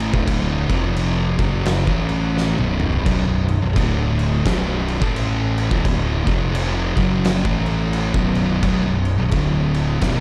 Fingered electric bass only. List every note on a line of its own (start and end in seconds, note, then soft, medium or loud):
0.00 0.10 A1 medium
0.14 0.66 D1 medium
0.69 1.35 F1 medium
1.39 1.84 F#1 medium
1.87 2.53 A1 medium
2.58 3.03 B0 medium
3.06 3.25 B0 loud
3.28 3.60 B0 medium
3.62 3.75 B0 medium
3.76 4.41 D1 loud
4.46 4.97 B0 medium
5.02 5.67 A1 loud
5.71 6.23 D1 loud
6.27 6.92 F1 medium
6.97 7.42 F#1 medium
7.45 8.11 A1 medium
8.14 8.59 B0 medium
8.63 8.83 B0 loud
8.84 9.16 B0 medium
9.19 9.32 B0 medium
9.33 9.98 D1 medium
10.03 10.20 B0 medium